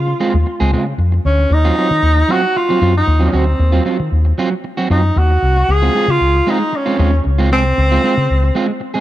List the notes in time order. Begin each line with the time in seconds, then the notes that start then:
Already playing: C#3 F4
0.07 muted clean electric guitar stroke
0.20 G#3 C4 F4
0.34 D#2, muted clean electric guitar stroke
0.46 muted clean electric guitar stroke
0.60 C#2 G#3 C4 G#4
0.73 C#3 G#3 C4 F4
0.86 muted clean electric guitar stroke
0.98 F2, muted clean electric guitar stroke
1.12 muted clean electric guitar stroke
1.25 D2 C#4
1.38 muted clean electric guitar stroke
1.50 D#2 D#4, muted clean electric guitar stroke
1.65 F#3 C4 F4
1.78 F#3 C4 F4
1.91 D#3
2.02 D#2
2.17 muted clean electric guitar stroke
2.28 F#3 C4 F4 F#4
2.43 muted clean electric guitar stroke
2.56 F4, muted clean electric guitar stroke
2.69 F#3 C4 F4
2.81 F#2 F#3 C4 F4
2.97 D#4
3.07 D#2, muted clean electric guitar stroke
3.20 F#3 C4 F4
3.28 F#3 C#4
3.33 D2 C4 F#4
3.47 muted clean electric guitar stroke
3.59 D#2, muted clean electric guitar stroke
3.72 F#3 C4 F4
3.85 F#3 C4 F4
4.00 D#3, muted clean electric guitar stroke
4.12 D#2
4.25 muted clean electric guitar stroke
4.38 F#3 C4 F4
4.51 muted clean electric guitar stroke
4.64 muted clean electric guitar stroke
4.77 F#3 C4 F#4
4.90 F#2 F#3 C4 D#4 F4
5.03 muted clean electric guitar stroke
5.16 D#2 F#4, muted clean electric guitar stroke
5.30 muted clean electric guitar stroke
5.42 C2
5.56 muted clean electric guitar stroke
5.68 C#2 G#4, muted clean electric guitar stroke
5.82 G#3 C4 F4
5.95 G#3 C4 F4
6.08 C#3 F4, muted clean electric guitar stroke
6.20 C#2
6.35 muted clean electric guitar stroke
6.47 G#3 C4 D#4 F4
6.61 muted clean electric guitar stroke
6.72 C#4, muted clean electric guitar stroke
6.86 G#3 C4 F4
6.99 D#2 G#3 C4 F4
7.13 muted clean electric guitar stroke
7.24 C#2, muted clean electric guitar stroke
7.38 G#3 C4 F4
7.51 C2 G#3 C4 G#4
7.77 C#2, muted clean electric guitar stroke
7.92 G#3 C4 F4
8.04 G#3 C4 F4
8.17 C#3, muted clean electric guitar stroke
8.30 C#2
8.43 muted clean electric guitar stroke
8.55 G#3 C4 F4
8.69 muted clean electric guitar stroke
8.80 muted clean electric guitar stroke
8.94 G#3 C4 G#4